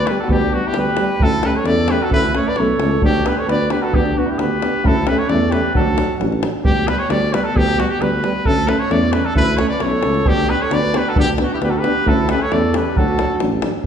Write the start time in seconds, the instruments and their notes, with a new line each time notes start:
Already playing: flugelhorn B4
0.07 euphonium G3 B3, flugelhorn G4, trumpet B4, davul high
0.19 flugelhorn F#4, trumpet A4
0.28 tuba D2, euphonium G3 B3, trumpet G4, davul low
0.34 flugelhorn D4
0.41 davul high
0.53 euphonium G3 B3, flugelhorn D4, trumpet F#4
0.67 flugelhorn E4, trumpet G4
0.73 tuba D2, euphonium G3 B3, davul high
0.78 flugelhorn G4, trumpet B4
0.97 euphonium G3 B3, davul high
1.18 tuba D2, euphonium A3 C#4, davul low
1.23 flugelhorn E4, trumpet A4
1.33 davul high
1.43 euphonium A3 C#4, flugelhorn G4, trumpet B4, davul high
1.56 flugelhorn A4, trumpet C#5
1.64 tuba E2, euphonium A3 C#4, flugelhorn A4, trumpet D5, davul high
1.88 euphonium A3 C#4, flugelhorn G4, trumpet B4, davul high
2.02 flugelhorn F#4, trumpet A4
2.10 tuba D2, euphonium A3 C#4, trumpet B4, davul low
2.14 flugelhorn E4
2.24 davul high
2.34 euphonium A3 C#4, flugelhorn A4, trumpet C#5, davul high
2.45 flugelhorn B4, trumpet D5, davul high
2.56 tuba B1, euphonium A3 C#4, flugelhorn A4, trumpet C#5, davul high
2.78 tuba C#2, euphonium A3 C#4, davul high
2.91 davul high
3.01 tuba D2, euphonium B3 D4, flugelhorn D4, trumpet G4, davul low
3.14 davul high
3.25 euphonium B3 D4, flugelhorn G4, trumpet B4, davul high
3.39 flugelhorn A4, trumpet C#5
3.47 tuba D2, euphonium B3 D4, flugelhorn B4, trumpet D5, davul high
3.70 euphonium B3 D4, flugelhorn G4, trumpet B4, davul high
3.82 flugelhorn F#4, trumpet A4
3.92 tuba D2, euphonium B3 D4, flugelhorn D4, trumpet G4, davul low
4.06 davul high
4.15 euphonium B3 D4, flugelhorn D4, trumpet F#4
4.26 flugelhorn E4
4.30 trumpet G4
4.37 tuba D2, euphonium B3 D4, flugelhorn G4, trumpet B4, davul high
4.62 euphonium B3 D4, davul high
4.84 tuba D2, euphonium A3 C#4, flugelhorn E4, trumpet A4, davul low
4.96 davul high
5.06 euphonium A3 C#4, flugelhorn G4, trumpet B4, davul high
5.17 flugelhorn A4, trumpet C#5
5.27 tuba E2, euphonium A3 C#4, flugelhorn A4, trumpet D5, davul high
5.50 euphonium A3 C#4, flugelhorn G4, trumpet B4, davul high
5.73 tuba D2, euphonium F#3 D4, flugelhorn F#4, trumpet A4, davul low
5.96 euphonium F#3 D4, davul high
6.19 tuba A1, euphonium F#3 D4, davul high
6.32 davul high
6.41 euphonium F#3 D4, davul high
6.64 tuba D2, euphonium G3 B3, trumpet G4, davul low
6.76 davul high
6.86 euphonium G3 B3, trumpet B4, davul high
6.99 trumpet C#5
7.08 tuba D2, euphonium G3 B3, trumpet D5, davul high
7.32 euphonium G3 B3, trumpet B4, davul high
7.44 trumpet A4
7.54 tuba D2, euphonium G3 B3, trumpet G4, davul low
7.69 davul high
7.77 euphonium G3 B3, trumpet F#4, davul high
7.90 trumpet G4
8.01 tuba D2, euphonium G3 B3, trumpet B4, davul high
8.23 euphonium G3 B3, davul high
8.45 tuba D2, euphonium A3 C#4, trumpet A4, davul low
8.58 davul high
8.67 euphonium A3 C#4, trumpet B4, davul high
8.79 trumpet C#5
8.89 tuba E2, euphonium A3 C#4, trumpet D5, davul high
9.12 euphonium A3 C#4, trumpet B4, davul high
9.25 trumpet A4
9.36 tuba D2, euphonium A3 C#4, flugelhorn E4, trumpet B4, davul low
9.57 euphonium A3 C#4, flugelhorn A4, trumpet C#5, davul high
9.69 flugelhorn B4, trumpet D5, davul high
9.79 tuba B1, euphonium A3, flugelhorn A4, trumpet C#5, davul high
9.83 euphonium C#4
9.92 davul high
10.03 tuba C#2, euphonium A3 C#4, davul high
10.14 davul high
10.24 tuba D2, euphonium B3 D4, flugelhorn D4, trumpet G4, davul low
10.38 davul high
10.47 euphonium B3 D4, flugelhorn G4, trumpet B4
10.62 flugelhorn A4, trumpet C#5
10.71 tuba D2, euphonium B3 D4, flugelhorn B4, trumpet D5, davul high
10.93 euphonium B3 D4, flugelhorn G4, davul high
10.97 trumpet B4
11.07 flugelhorn F#4, trumpet A4
11.15 tuba D2, euphonium B3 D4, flugelhorn D4, davul low
11.19 trumpet G4
11.28 davul high
11.38 euphonium B3 D4, davul high
11.42 flugelhorn D4, trumpet F#4
11.53 flugelhorn E4, trumpet G4
11.60 tuba D2, euphonium B3 D4, flugelhorn G4, trumpet B4, davul high
11.70 flugelhorn F#4, trumpet A4
11.78 euphonium B3, flugelhorn G4, trumpet B4
11.84 euphonium D4, davul high
12.05 tuba D2, euphonium A3 C#4, flugelhorn E4, trumpet A4, davul low
12.19 davul high
12.28 euphonium A3 C#4, flugelhorn G4, trumpet B4, davul high
12.40 flugelhorn A4, trumpet C#5
12.50 tuba E2, euphonium A3 C#4, flugelhorn A4, trumpet D5, davul high
12.73 euphonium A3 C#4, flugelhorn G4, davul high
12.77 trumpet B4
12.95 tuba D2, euphonium F#3 D4, flugelhorn F#4, trumpet A4, davul low
13.08 davul high
13.18 euphonium F#3 D4, davul high
13.30 davul high
13.40 tuba A1, euphonium F#3 D4, davul high
13.52 davul high
13.62 euphonium F#3 D4, davul high
13.74 davul high